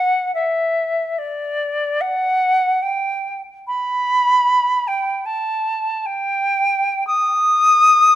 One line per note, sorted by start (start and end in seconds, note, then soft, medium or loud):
0.00 0.34 F#5 medium
0.35 1.20 E5 medium
1.18 2.02 D5 medium
2.01 2.84 F#5 medium
2.82 3.41 G5 medium
3.67 4.89 B5 loud
4.88 5.27 G5 medium
5.26 6.07 A5 medium
6.06 7.06 G5 loud
7.07 8.15 D#6 loud